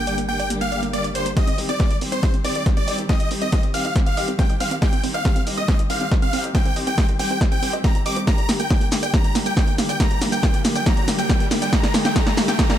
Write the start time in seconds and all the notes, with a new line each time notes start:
Already playing: G1 G5
0.07 D3 G3 A#3 G4 D5, closed hi-hat
0.18 A#3, closed hi-hat
0.29 D3 G3 A#3 G4 G5
0.40 D5, closed hi-hat
0.50 D3 G3 A#3 G4, closed hi-hat
0.61 A#3 F5, closed hi-hat
0.72 D3 G3 A#3 G4 D5, closed hi-hat
0.83 A#3, closed hi-hat
0.93 D3 G3 A#3 G4 D5, closed hi-hat
1.04 D5, closed hi-hat
1.15 D3 G3 A#3 G4 C5, closed hi-hat
1.26 A#3, closed hi-hat
1.37 D#3 G3 C4 G4 D#5, kick, snare, closed hi-hat
1.47 C2 C4, closed hi-hat
1.58 C2 D#3 G3 C4 G4 D#5, open hi-hat
1.69 C2 C4 D5, closed hi-hat
1.80 D#3 G3 C4 G4, kick, snare, closed hi-hat
1.91 C2 D#5, closed hi-hat
2.01 C2 D#3 G3 C4 G4, open hi-hat
2.12 C2 C4 C5, closed hi-hat
2.23 D#3 G3 C4 G4 D#5, kick, snare, closed hi-hat
2.34 C2 C4, closed hi-hat
2.44 C2 D#3 G3 C4 G4 D5, open hi-hat
2.55 C2 D#5, closed hi-hat
2.66 D#3 G3 C4 G4, kick, snare, closed hi-hat
2.77 C2 C4 D5, closed hi-hat
2.87 C2 D#3 G3 C4 G4 D#5, open hi-hat
2.98 C2 C4, closed hi-hat
3.09 D#3 G3 C4 G4 D#5, kick, snare, closed hi-hat
3.20 C2 D#5, closed hi-hat
3.31 C2 D#3 G3 C4 G4, open hi-hat
3.42 C2 C4 D#5, closed hi-hat
3.52 D#3 G3 C4 G4 D#5, kick, snare, closed hi-hat
3.63 C2 C4, closed hi-hat
3.74 C2 D#3 G3 C4 G4 F5, open hi-hat
3.85 C2 D#5, closed hi-hat
3.96 D#3 G3 C4 G4, kick, snare, closed hi-hat
4.06 C2 C4 F5, closed hi-hat
4.17 C2 D#3 G3 C4 G4 D#5, open hi-hat
4.28 C2 C4, closed hi-hat
4.39 D#3 G3 C4 G4 G5, kick, snare, closed hi-hat
4.50 C2 D#5, closed hi-hat
4.60 C2 D#3 G3 C4 G4 F5, open hi-hat
4.71 C2 C4, closed hi-hat
4.82 D#3 G3 C4 G4 D#5 G5, kick, snare, closed hi-hat
4.93 C2 C4, closed hi-hat
5.04 C2 D#3 G3 C4 G4, open hi-hat
5.14 C2 D#5 F5, closed hi-hat
5.25 D#3 G3 C4 G4, kick, snare, closed hi-hat
5.36 C2 C4, closed hi-hat
5.46 C2 D#3 G3 C4 G4 D#5, open hi-hat
5.57 C2 C4 D#5
5.68 D#3 G3 C4 G4, kick, snare, closed hi-hat
5.79 C2 D#5, closed hi-hat
5.90 C2 D#3 G3 C4 G4 F5, open hi-hat
6.01 C2 C4, closed hi-hat
6.11 D#3 G3 C4 G4 D#5, kick, snare, closed hi-hat
6.22 C2 C4 F5, closed hi-hat
6.33 C2 D#3 G3 C4 G4, open hi-hat
6.44 C2 D#5, closed hi-hat
6.55 D#3 G3 C4 G4 G5, kick, snare, closed hi-hat
6.65 C2 C4, closed hi-hat
6.76 C2 D#3 G3 C4 G4 D#5, open hi-hat
6.87 C2 C4 G5, closed hi-hat
6.98 D#3 G3 C4 G4, kick, snare, closed hi-hat
7.09 C2 D#5, closed hi-hat
7.19 C2 D#3 G3 C4 G4 G5, open hi-hat
7.30 C2 C4, closed hi-hat
7.41 D#3 G3 C4 G4 D#5, kick, snare, closed hi-hat
7.52 C2 C4 G5, closed hi-hat
7.62 C2 D#3 G3 C4 G4, open hi-hat
7.73 D2 D#5, closed hi-hat
7.84 D#3 G3 C4 G4 A#5, kick, snare, closed hi-hat
7.95 C2 C4, closed hi-hat
8.06 C2 D#3 G3 C4 G4 D#5 D6, open hi-hat
8.16 C2 C4, closed hi-hat
8.27 D3 G3 A#3 G4 A#5, kick, snare, closed hi-hat, riser, shaker
8.38 G1 D5, closed hi-hat
8.49 G1 D3 G3 A#3 G4, snare, open hi-hat, shaker
8.60 G1 A#3 G5, closed hi-hat, shaker
8.70 D3 G3 A#3 G4 D5, kick, snare, closed hi-hat, shaker
8.81 G1 A#3, closed hi-hat
8.92 G1 D3 G3 A#3 G4, snare, open hi-hat, shaker
9.03 G1 D5 G5, closed hi-hat, shaker
9.14 D3 G3 A#3 G4 A#5, kick, snare, closed hi-hat, shaker
9.24 G1 D5, closed hi-hat
9.35 G1 D3 G3 A#3 G4, snare, open hi-hat, shaker
9.46 G1 A#3 G5, closed hi-hat, shaker
9.57 D3 G3 A#3 G4 D5, kick, snare, closed hi-hat, shaker
9.68 G1 A#3, closed hi-hat
9.78 G1 D3 G3 A#3 G4, snare, open hi-hat, shaker
9.89 G1 D5 G5, closed hi-hat, shaker
10.00 D3 G3 A#3 G4 A#5, kick, snare, closed hi-hat, shaker
10.11 G1 D5, closed hi-hat
10.21 G1 D3 G3 A#3 G4, snare, open hi-hat, shaker
10.32 G1 A#3 G5, closed hi-hat, shaker
10.43 D3 G3 A#3 G4 D5, kick, snare, closed hi-hat, shaker
10.54 G1 A#3, closed hi-hat
10.65 G1 D3 G3 A#3 G4, snare, open hi-hat, shaker
10.75 G1 D5 G5, closed hi-hat, shaker
10.86 D3 G3 A#3 G4 A#5, kick, snare, closed hi-hat, shaker
10.97 G1 D5, closed hi-hat
11.08 G1 D3 G3 A#3 G4, snare, open hi-hat, shaker
11.18 G1 A#3 G5, closed hi-hat, shaker
11.29 D3 G3 A#3 G4 D5, kick, snare, closed hi-hat, shaker
11.40 G1 A#3, closed hi-hat
11.51 G1 D3 G3 A#3 G4, snare, open hi-hat, shaker
11.62 G1 D5 G5, closed hi-hat, shaker
11.72 D3 G3 A#3 G4 A#5, kick, snare, closed hi-hat, shaker
11.83 G1 D5, snare, closed hi-hat
11.94 G1 D3 G3 A#3 G4, snare, open hi-hat, shaker
12.05 G1 A#3 G5, snare, closed hi-hat, shaker
12.15 D3 G3 A#3 G4 A#5, kick, snare, closed hi-hat, shaker
12.27 G1 D5, snare, closed hi-hat
12.37 G1 D3 G3 A#3 G4, snare, open hi-hat, shaker
12.48 G1 A#3 G5, snare, closed hi-hat, shaker
12.59 D3 G3 A#3 G4 A#5, kick, snare, closed hi-hat, shaker
12.70 G1 D5, snare, closed hi-hat